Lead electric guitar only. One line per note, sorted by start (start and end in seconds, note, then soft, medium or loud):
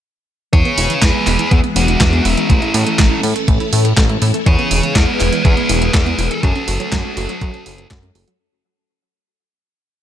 0.53 0.99 G#4 medium
0.53 1.02 C#5 loud
1.02 1.48 G#4 medium
1.02 1.53 B4 loud
1.51 1.59 E4 medium
1.51 1.58 G#4 loud
1.76 2.22 D4 medium
1.76 2.27 F#4 loud
2.25 3.20 C#4 medium
2.25 3.20 E4 medium
4.46 4.93 G#4 medium
4.46 4.97 C#5 loud
4.96 5.42 G#4 medium
4.96 5.44 B4 loud
5.45 5.91 G#4 medium
5.45 5.93 B4 loud
5.94 6.40 G#4 medium
5.94 6.43 B4 loud
6.43 7.87 F#4 medium
6.43 7.87 A4 medium